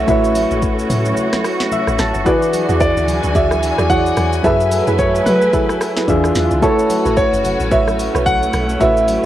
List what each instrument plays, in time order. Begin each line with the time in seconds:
Already playing: string section A3 C#4 F#4
0.07 log drum bass A1, synth keys A3 E4 F#4 B4, grand piano E5, kick, low conga, shaker
0.11 synth keys C#5
0.24 shaker
0.35 open hi-hat, high conga, shaker
0.51 log drum bass A1, shaker
0.62 kick, shaker
0.79 shaker
0.90 log drum bass A2, open hi-hat, high conga, low conga, shaker
1.05 high conga, shaker
1.17 low conga, shaker
1.33 cross-stick, snare, high conga, shaker
1.44 cross-stick, open hi-hat, shaker
1.60 snare, high conga, shaker
1.72 synth keys E5, high conga, low conga, shaker
1.87 log drum bass A1, cross-stick, shaker
1.99 log drum bass A1, synth keys A5, cross-stick, snare, open hi-hat, high conga, shaker
2.14 log drum bass F#1, shaker
2.25 synth keys E3 E4 F#4 G#4, string section E3 D4 G#5, synth pluck F#4 G#4 D5, grand piano B4, kick, low conga, shaker
2.29 synth keys D5
2.42 shaker
2.53 open hi-hat, high conga, shaker
2.69 log drum bass E2, synth pluck F#4 G#4 D5, shaker
2.80 grand piano D5, kick, shaker
2.97 log drum bass D2, shaker
3.08 open hi-hat, high conga, low conga, shaker
3.23 log drum bass D2, high conga, shaker
3.35 log drum bass D2, synth pluck F#4 G#4 D5, grand piano E5, kick, low conga, shaker
3.51 cross-stick, high conga, shaker
3.63 open hi-hat, shaker
3.78 log drum bass E2, synth pluck F#4 G#4 D5, cross-stick, high conga, shaker
3.90 synth keys E3 E4 F#4 G#4 C#5, grand piano F#5, kick, high conga, low conga, shaker
3.98 synth keys D5
4.06 shaker
4.17 log drum bass E2, cross-stick, open hi-hat, high conga, shaker
4.33 shaker
4.43 log drum bass F#2, synth keys F#3 F#4 G#4 A4 B4, string section F#3 A3 E4 B4, synth pluck E4 G#4 A4 B4, grand piano E5, kick, low conga, shaker
4.47 synth keys E5
4.60 shaker
4.72 open hi-hat, high conga, shaker
4.87 log drum bass F#2, synth pluck E4 G#4 A4 B4, shaker
4.99 grand piano C#5, kick, shaker
5.15 shaker
5.26 log drum bass F#3, grand piano B4, open hi-hat, high conga, low conga, shaker
5.42 high conga, shaker
5.53 synth pluck E4 G#4 A4 B4, kick, low conga, shaker
5.69 cross-stick, high conga, shaker
5.81 cross-stick, open hi-hat, shaker
5.96 synth pluck E4 G#4 A4 B4, snare, high conga, shaker
6.08 log drum bass E2, synth keys E3 D4 F4 G#4 E5, string section E3 D4 F4, kick, high conga, low conga, shaker
6.24 cross-stick, shaker
6.35 log drum bass E2, snare, open hi-hat, high conga, shaker
6.51 log drum bass C#2, shaker
6.61 synth keys A3 E4 F#4 B4, string section A3 C#4 F#4, synth pluck F#4 B4 C#5, grand piano A4, kick, low conga, shaker
6.65 synth keys C#5
6.79 shaker
6.90 open hi-hat, high conga, shaker
7.05 log drum bass A1, synth pluck F#4 B4 C#5, shaker
7.17 grand piano C#5, kick, shaker
7.33 log drum bass F#1, shaker
7.44 open hi-hat, high conga, low conga, shaker
7.60 log drum bass A1, high conga, shaker
7.71 log drum bass A1, synth pluck F#4 B4 C#5, grand piano E5, kick, low conga, shaker
7.88 cross-stick, high conga, shaker
7.99 open hi-hat, shaker
8.14 log drum bass B1, synth pluck F#4 B4 C#5, cross-stick, high conga, shaker
8.26 grand piano F#5, kick, high conga, low conga, shaker
8.43 shaker
8.53 log drum bass B1, cross-stick, open hi-hat, high conga, shaker
8.69 shaker
8.79 log drum bass A1, synth keys A3 E4 F#4 B4, synth pluck F#4 B4 C#5, grand piano E5, kick, low conga, shaker
8.84 synth keys E5
8.97 shaker
9.08 open hi-hat, high conga, shaker